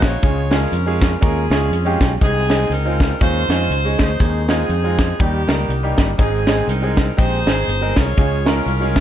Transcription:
Already playing: A#1 G#3 C4 D#4 F#4
0.02 F4 G#4 C#5, kick, snare, closed hi-hat
0.22 C#2 C#3 G#3 C#4 F4 G#4, kick, closed hi-hat
0.50 G#3 C#4 F4 G#4 A#4, snare, closed hi-hat
0.72 F2, closed hi-hat
0.86 G#3 C#4 F4 G#4
1.02 kick, snare, closed hi-hat
1.21 D#2 G#3 C#4 F4 G#4 A#4, kick, closed hi-hat
1.50 C#2 G#3 C#4 F4 G#4, snare, closed hi-hat
1.70 F2, closed hi-hat
1.85 G#3 C#4 F4 G4
2.00 B1, kick, snare, closed hi-hat
2.21 C2 C3 G#3 C4 D#4 G#4, kick, closed hi-hat
2.49 G#3 C4 D#4 G#4, snare, closed hi-hat
2.70 C#2 D#4 A#4, closed hi-hat
2.85 G#3 C4 D#4 F4
3.00 kick, snare, closed hi-hat
3.21 D#2 D#3 G#3 C#4 D#4 F4 G#4 C5, kick, closed hi-hat
3.48 F2 G#3 C#4 D#4 F4, snare, closed hi-hat
3.70 C#2, closed hi-hat
3.85 G#3 C#4 D#4 G#4
3.99 D2 D#4 G#4 C5, kick, snare, closed hi-hat
4.20 D#2 D#3 G#3 C4 D#4 G#4, kick, closed hi-hat
4.48 G#3 C4 D#4 F4 G#4, snare, closed hi-hat
4.69 F2, closed hi-hat
4.84 G#3 C4 D#4 F4
4.99 kick, snare, closed hi-hat
5.19 D#2 D#3 G3 A#3 D#4 G4, kick, closed hi-hat
5.47 C#2 G3 A#3 D#4 A#4, snare, closed hi-hat
5.68 C2, closed hi-hat
5.83 G3 A#3 D#4 G4
5.98 G1, kick, snare, closed hi-hat
6.18 G#1 G#2 G#3 C4 D#4 G#4, kick, closed hi-hat
6.47 G#3 C4 D#4 G#4, snare, closed hi-hat
6.68 C2 D#4 A#4, closed hi-hat
6.82 G#3 C4 D#4 G#4
6.97 kick, snare, closed hi-hat
7.17 A#1 G#3 C4 D#4 G4 G#4 C5, kick, closed hi-hat
7.46 G#1 G#3 C4 D#4 G#4, snare, closed hi-hat
7.68 G1, closed hi-hat
7.81 G#3 C4 D#4 A#4
7.96 C2 F4 G#4 C#5, kick, snare, closed hi-hat
8.17 C#2 C#3 G#3 C#4 F4 G#4, kick, closed hi-hat
8.45 G#3 C#4 F4 A#4, snare, closed hi-hat
8.66 C2, closed hi-hat
8.80 G#3 C#4 F4 G#4
8.96 kick, snare, closed hi-hat

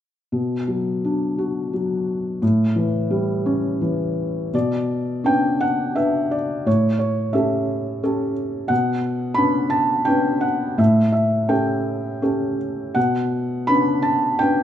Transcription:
0.32 B2
0.68 F#3
1.04 D4
1.38 F#4
1.73 F#3
2.42 A2
2.76 E3
3.10 G3
3.46 C#4
3.81 E3
4.54 B2 D5
5.24 C#4 D4 B4 G5
5.61 F#5
5.96 B3 D4 B4 E5
6.31 D5
6.66 A2 C#5
6.99 C#5
7.33 C#4 G4 A4 E5
8.03 C#4 G4 A4
8.68 B2 F#5
9.34 C#4 D4 B4 B5
9.70 A5
10.05 C#4 D4 B4 G5
10.41 F#5
10.78 A2 E5
11.12 E5
11.48 C#4 G4 A4 G5
12.22 C#4 G4 A4
12.95 B2 F#5
13.67 C#4 D4 B4 B5
14.02 A5
14.39 C#4 D4 B4 G5

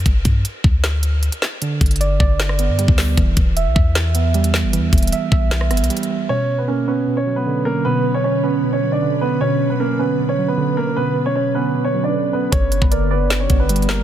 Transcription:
0.06 G1, kick, closed hi-hat
0.25 G2, kick, closed hi-hat
0.45 closed hi-hat
0.64 D2, kick
0.84 snare, clap, closed hi-hat
1.03 closed hi-hat
1.23 closed hi-hat
1.32 closed hi-hat
1.42 snare, clap
1.61 D3, closed hi-hat
1.81 G1, kick, closed hi-hat
1.86 closed hi-hat
1.91 closed hi-hat
1.96 closed hi-hat
2.00 D5, closed hi-hat
2.20 G1 D5, kick
2.40 D3, snare, clap, closed hi-hat
2.49 cross-stick
2.59 B3, closed hi-hat
2.69 G2
2.79 G3, closed hi-hat
2.88 D2, kick
2.98 G3, snare, clap, open hi-hat
3.17 E1 E3, kick, closed hi-hat
3.37 E1, kick, closed hi-hat
3.56 E5, closed hi-hat
3.66 B1
3.75 E2 E5, kick
3.95 E3, snare, clap, closed hi-hat
4.15 B3, closed hi-hat
4.34 G3, closed hi-hat
4.44 closed hi-hat
4.54 snare, clap
4.64 G1
4.73 E3, closed hi-hat
4.78 E2
4.93 E1, kick, closed hi-hat
4.98 closed hi-hat
5.03 closed hi-hat
5.07 closed hi-hat
5.12 E5, closed hi-hat
5.32 B1 E5, kick
5.51 E3, snare, clap, closed hi-hat
5.61 cross-stick
5.71 G1 B3, cross-stick, closed hi-hat
5.77 B1, closed hi-hat
5.84 closed hi-hat
5.90 G3, closed hi-hat
5.97 closed hi-hat
6.03 closed hi-hat
6.09 G3
6.29 B2 D3 C#4 B4 C#5
6.58 B3 B4
6.68 A#3 C#4 A#4
6.88 B3 C#4 B4
7.07 B2
7.17 C#4 C#5
7.27 F#3
7.36 B3 B4
7.46 D3
7.65 D3 A#3 A#4
7.85 B2 B3 B4
8.14 C#4 C#5
8.24 C#4 C#5
8.43 B3 C#4 B4
8.63 B2
8.73 C#4 C#5
8.83 F#3
8.92 D4 D5
9.02 D3
9.21 D3 B3 B4
9.41 B2 B3 C#4 C#5
9.70 B3 B4
9.80 A#3 C#4 A#4
9.99 B3 C#4 B4
10.19 B2
10.29 C#4 C#5
10.38 F#3
10.48 B3 B4
10.57 D3
10.77 D3 A#3 A#4
10.96 B2 B3 B4
11.26 C#4 C#5
11.36 C#4 C#5
11.55 B3 C#4 B4
11.74 B2
11.84 C#4 C#5
11.94 F#3
12.04 D4 D5
12.14 D3
12.33 D3 B3 B4
12.52 G1 D3 C#4 G4 C#5, kick, closed hi-hat
12.72 closed hi-hat
12.82 G1 B3 B4, kick
12.91 A#3 A#4 D5, closed hi-hat
13.11 B3 B4 D5
13.30 D3, snare, clap, closed hi-hat
13.40 C#4 C#5
13.50 G1 B3, kick, closed hi-hat
13.60 B3 B4
13.69 G3, closed hi-hat
13.76 closed hi-hat
13.82 closed hi-hat
13.89 A#3 A#4, snare, clap

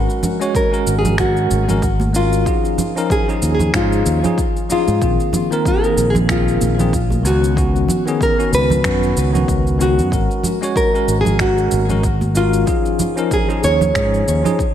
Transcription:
Already playing: G#3 C#4 F#4 A#4
0.10 cabasa
0.23 low conga, cabasa
0.39 G#3 C#4 F#4 C#5, cabasa
0.55 A#4, kick, cabasa
0.71 G#3 C#4 F#4 A#4, cabasa
0.87 G#1, cabasa
0.99 G#4
1.05 low conga, cabasa
1.17 G#3 C#4 F#4 A#4, finger snap, kick, cabasa
1.37 cabasa
1.50 G#1, high conga, cabasa
1.68 G#3 C#4 F#4 A#4, low conga, cabasa
1.82 kick, cabasa
2.00 high conga, cabasa
2.13 G#3 C#4 F4 F#4 A#4, cabasa
2.33 cabasa
2.45 F3 C#4 D#4 G#4, kick, cabasa
2.65 cabasa
2.78 low conga, cabasa
2.96 F3 C#4 D#4 A#4, cabasa
3.10 G#4, kick, cabasa
3.27 F3 C#4 D#4 G#4, cabasa
3.42 D#2, cabasa
3.55 G#4
3.59 low conga, cabasa
3.73 G#2 F3 C#4 D#4 F4 G#4, finger snap, kick, cabasa
3.92 cabasa
4.06 D#2, cabasa
4.23 F3 C#4 D#4 G#4, low conga, cabasa
4.38 kick, cabasa
4.56 cabasa
4.69 F3 C#4 D#4 F4 G#4, cabasa
4.88 G#2, cabasa
5.01 A#1 D#3 A#3 C4 G#4, kick, cabasa
5.20 cabasa
5.33 low conga, cabasa
5.50 D#3 A#3 C4 A#4, cabasa
5.65 A#4, kick, cabasa
5.82 D#3 A#3 C4 G#4, cabasa
5.97 A#1, cabasa
6.10 G#4
6.15 low conga, cabasa
6.28 D#3 A#3 C4 F4 G#4, finger snap, kick, cabasa
6.48 cabasa
6.61 A#1, high conga, cabasa
6.78 D#3 A#3 C4 G#4, low conga, cabasa
6.93 kick, cabasa
7.10 high conga, cabasa
7.24 C#2 D#3 B3 C#4 F#4, cabasa
7.44 cabasa
7.56 D#3 B3 C#4 F#4, kick, cabasa
7.76 cabasa
7.88 low conga, cabasa
8.06 D#3 B3 C#4 G#4, cabasa
8.21 A#4, kick, cabasa
8.37 D#3 B3 C#4 F#4, cabasa
8.52 C#2 B4, cabasa
8.70 low conga, cabasa
8.82 F#2 D#3 B3 C#4 F#4, finger snap, kick, cabasa
9.03 cabasa
9.16 C#2, cabasa
9.32 D#3 B3 C#4 F#4, low conga, cabasa
9.48 C#2, kick, cabasa
9.67 cabasa
9.78 D#3 B3 C#4 F#4, cabasa
9.98 F#2, cabasa
10.10 G#1 G#3 C#4 F#4 A#4, kick, cabasa
10.31 cabasa
10.43 low conga, cabasa
10.61 G#3 C#4 F#4 C#5, cabasa
10.76 A#4, kick, cabasa
10.93 G#3 C#4 F#4 A#4, cabasa
11.08 G#1, cabasa
11.21 G#4
11.25 low conga, cabasa
11.39 G#3 C#4 F#4 A#4, finger snap, kick, cabasa
11.58 cabasa
11.71 G#1, high conga, cabasa
11.88 G#3 C#4 F#4 A#4, low conga, cabasa
12.03 kick, cabasa
12.21 high conga, cabasa
12.35 G#3 C#4 F4 F#4 A#4, cabasa
12.53 cabasa
12.66 F3 C#4 D#4 G#4, kick, cabasa
12.86 cabasa
12.99 low conga, cabasa
13.16 F3 C#4 D#4 A#4, cabasa
13.31 G#4, kick, cabasa
13.48 F3 C#4 D#4 G#4, cabasa
13.63 D#2 C#5, cabasa
13.81 low conga, cabasa
13.94 G#2 F3 C#4 D#4 G#4, finger snap, kick, cabasa
14.14 cabasa
14.27 D#2, cabasa
14.43 F3 C#4 D#4 G#4, low conga, cabasa
14.59 kick, cabasa

